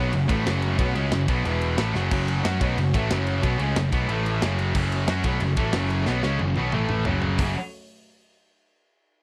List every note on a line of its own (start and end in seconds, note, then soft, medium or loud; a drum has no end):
0.00 0.11 B1 loud
0.00 0.11 B2 loud
0.00 0.11 F#3 loud
0.00 1.43 A3 medium
0.00 0.12 B3 loud
0.00 1.43 C#4 medium
0.00 1.43 F#4 medium
0.00 1.43 C#5 medium
0.00 1.43 F#5 medium
0.12 0.28 F#1 medium
0.12 0.25 F#2 medium
0.12 0.26 C#3 medium
0.12 ride loud
0.28 0.44 A1 loud
0.28 0.45 A2 medium
0.28 0.45 E3 medium
0.28 0.45 A3 medium
0.28 kick loud
0.28 ride medium
0.45 0.77 F#1 loud
0.45 0.78 F#2 medium
0.45 0.78 C#3 loud
0.45 0.77 F#3 loud
0.45 snare loud
0.45 ride loud
0.62 ride medium
0.78 0.94 B1 loud
0.78 0.94 B2 loud
0.78 0.94 F#3 loud
0.78 0.95 B3 loud
0.78 kick loud
0.78 ride loud
0.95 1.10 C#2 loud
0.95 1.11 C#3 medium
0.95 1.11 G#3 medium
0.95 1.11 C#4 loud
0.95 ride medium
1.11 1.27 F#1 medium
1.11 1.25 F#2 medium
1.11 1.25 C#3 medium
1.11 snare loud
1.11 ride medium
1.28 1.44 B1 loud
1.28 1.44 B2 loud
1.28 1.46 F#3 loud
1.28 1.45 B3 loud
1.28 kick loud
1.28 ride medium
1.43 1.75 E1 loud
1.43 1.77 E2 medium
1.43 1.78 B2 medium
1.43 1.77 E3 medium
1.43 1.77 E3 loud
1.43 1.77 B3 medium
1.43 1.77 E4 medium
1.43 1.77 B4 medium
1.43 1.77 B5 medium
1.43 ride loud
1.61 ride medium
1.78 1.93 A1 loud
1.78 1.94 A2 medium
1.78 1.94 E3 loud
1.78 7.02 A3 medium
1.78 1.95 A3 loud
1.78 4.07 C#4 medium
1.78 4.07 F#4 medium
1.78 4.07 C#5 medium
1.78 4.07 F#5 medium
1.78 snare loud
1.78 ride loud
1.94 2.10 F#1 loud
1.94 2.10 F#2 medium
1.94 2.11 C#3 loud
1.94 2.11 F#3 loud
1.94 snare medium
2.11 2.42 F#1 loud
2.11 2.44 F#2 loud
2.11 2.44 C#3 loud
2.11 2.43 F#3 loud
2.11 kick loud
2.11 crash loud
2.28 ride medium
2.44 2.60 F#2 medium
2.44 2.60 F#3 medium
2.44 2.60 C#4 loud
2.44 2.61 F#4 loud
2.44 snare loud
2.44 ride loud
2.60 2.76 B1 loud
2.60 2.76 B2 loud
2.60 2.77 F#3 loud
2.60 2.77 B3 loud
2.60 kick loud
2.60 ride medium
2.77 2.93 F#1 medium
2.77 2.91 F#2 medium
2.77 2.91 C#3 medium
2.77 ride loud
2.94 3.09 A1 loud
2.94 3.10 A2 medium
2.94 3.10 E3 loud
2.94 3.10 A3 loud
2.94 kick loud
2.94 ride medium
3.10 3.41 F#1 loud
3.10 3.43 F#2 loud
3.10 3.43 C#3 loud
3.10 3.43 F#3 loud
3.10 snare loud
3.10 ride loud
3.27 ride medium
3.43 3.58 B1 loud
3.43 3.59 B2 loud
3.43 3.60 F#3 loud
3.43 3.60 B3 loud
3.43 kick loud
3.43 ride loud
3.59 3.75 C#2 medium
3.59 3.76 C#3 medium
3.59 3.76 G#3 medium
3.59 3.76 C#4 medium
3.59 ride medium
3.76 3.91 F#1 medium
3.76 3.90 F#2 medium
3.76 3.90 C#3 medium
3.76 snare loud
3.76 ride loud
3.92 4.08 B1 loud
3.92 4.09 B2 medium
3.92 4.09 F#3 loud
3.92 4.09 B3 loud
3.92 kick loud
3.92 ride medium
4.07 4.40 A1 loud
4.07 4.42 A2 loud
4.07 4.41 E3 medium
4.07 4.42 E3 medium
4.07 4.43 A3 loud
4.07 4.41 E4 medium
4.07 4.39 A4 medium
4.07 4.41 A5 medium
4.07 ride loud
4.26 ride medium
4.40 4.73 F#1 loud
4.40 4.75 F#2 loud
4.40 4.75 C#3 loud
4.40 6.70 F#3 medium
4.40 4.75 F#3 loud
4.40 6.70 C#4 medium
4.40 6.70 A4 medium
4.40 6.70 C#5 medium
4.40 snare loud
4.40 ride loud
4.59 ride medium
4.75 5.06 F#1 loud
4.75 5.08 F#2 medium
4.75 5.08 C#3 loud
4.75 5.07 F#3 loud
4.75 kick loud
4.75 crash loud
4.92 ride medium
5.08 5.23 F#2 loud
5.08 5.24 F#3 medium
5.08 5.25 C#4 medium
5.08 5.25 F#4 medium
5.08 snare loud
5.08 ride loud
5.24 5.40 B1 loud
5.24 5.41 B2 medium
5.24 5.41 F#3 loud
5.24 5.41 B3 loud
5.24 kick loud
5.24 ride medium
5.40 5.56 F#1 medium
5.40 5.55 F#2 medium
5.40 5.55 C#3 medium
5.40 ride loud
5.57 5.73 A1 loud
5.57 5.74 A2 medium
5.57 5.74 E3 medium
5.57 5.75 A3 loud
5.57 kick loud
5.57 ride medium
5.73 6.05 F#1 loud
5.73 6.07 F#2 loud
5.73 6.06 C#3 loud
5.73 6.06 F#3 loud
5.73 snare loud
5.73 ride loud
5.90 ride medium
6.06 6.23 B1 loud
6.06 6.23 B2 medium
6.06 6.23 F#3 medium
6.06 6.23 B3 loud
6.06 snare medium
6.23 6.39 C#2 loud
6.23 6.40 C#3 medium
6.23 6.40 G#3 medium
6.23 6.40 C#4 medium
6.23 snare medium
6.39 6.56 F#1 medium
6.39 6.54 F#2 medium
6.39 6.54 C#3 medium
6.39 high tom medium
6.56 6.72 B1 loud
6.56 6.73 B2 medium
6.56 6.73 F#3 loud
6.56 6.73 B3 loud
6.56 high tom medium
6.72 7.04 A1 medium
6.72 7.06 A2 loud
6.72 7.06 E3 medium
6.72 7.06 E3 loud
6.72 7.06 A3 loud
6.72 7.06 E4 medium
6.72 7.36 A4 medium
6.72 7.06 A5 medium
6.72 mid tom loud
6.89 mid tom medium
7.04 7.37 F#1 loud
7.04 7.38 F#2 loud
7.04 7.39 C#3 loud
7.04 7.36 F#3 medium
7.04 7.39 F#3 loud
7.04 7.36 A3 medium
7.04 7.36 C#4 medium
7.04 7.35 C#5 medium
7.04 floor tom loud
7.22 floor tom medium
7.37 7.54 F#1 loud
7.37 7.52 F#2 loud
7.37 7.53 C#3 loud
7.37 7.53 F#3 medium
7.37 7.54 A3 medium
7.37 7.53 C#4 medium
7.37 7.53 A4 medium
7.37 7.53 C#5 medium
7.37 kick loud
7.37 open hi-hat loud
7.41 7.53 F#3 loud